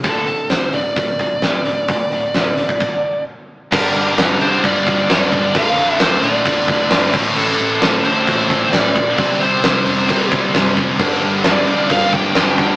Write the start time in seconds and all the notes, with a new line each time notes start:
0.03 D1 D2 A2 D3 A4, kick, open hi-hat
0.27 D2 A2, open hi-hat
0.50 D1 D2 A2 C5, snare, open hi-hat
0.73 D1 D2 A2 D5, open hi-hat
0.96 D1 D2 A2, kick, open hi-hat
1.19 D1 D2 A2, kick, open hi-hat
1.42 D1 D2 A2, snare, open hi-hat
1.65 D2 A2, open hi-hat
1.88 D1 D2 A2, kick, open hi-hat
2.11 D1 D2 A2, open hi-hat
2.34 D1 D2 A2, snare, open hi-hat
2.57 D1 D2 A2, open hi-hat
2.69 kick
2.80 kick, crash
3.71 G1 G2 D3 G3 A#3 D4 G4 A#4, kick, crash
3.95 G1, crash
4.18 G1, snare, crash
4.40 C2 G2 D3 G3 A#3 D4 G4 C5, crash
4.63 G1 G2 D3 G3 D5, kick, crash
4.87 kick, snare, crash
5.09 G1 D3 G3 A#3 D4 G4 D5, snare, crash
5.32 G1, kick, crash
5.55 F1 D2 A2 D3 A3 F4 F5, kick, crash
5.77 F1, crash
5.92 E5
5.99 F1 C5, snare, crash
6.22 A#1 D2 A2 D3 A3 F4 D5, crash
6.45 F1 D2 A2 D3, kick, crash
6.68 F1, kick, crash
6.90 G1 D2 A2 D3 A3 F4, snare, crash
7.12 A1 A2 E3 A3 C4 E4 A4, kick, crash
7.36 A1 A4, crash
7.59 A1, crash
7.81 A1 A2 E3 A3 C4 E4 A4, snare, crash
8.04 D2 A2 E3 A3 C5, crash
8.27 A1, kick, crash
8.48 A2 E3 A3 C4 E4 A4, kick, snare, crash
8.72 A1 D5, snare, crash
8.96 A#1, kick, crash
9.17 C2 C3 G3 C4 E4 G4 C5 D5, kick, crash
9.40 C2 C5, crash
9.63 C2, snare, crash
9.85 F2 C3 G3 C4 E4 G4 C5, crash
10.08 C2 C3 G3 C4, kick, crash
10.32 C2, kick, crash
10.54 G2 C3 G3 C4 E4 G4 C5, snare, crash
10.77 F1, kick, crash
10.99 G1 G2 D3 G3 A#3 D4 G4, kick, crash
11.22 G1, crash
11.44 G1 D5, snare, crash
11.66 C2 G2 D3 G3 A#3 D4 G4, crash
11.89 G1 G2 D3 G3 F5, kick, crash
12.13 G5, kick, snare, crash
12.34 G1 G2 D3 G3 A#3 D4 G4, snare, crash
12.58 E1 G5, kick, crash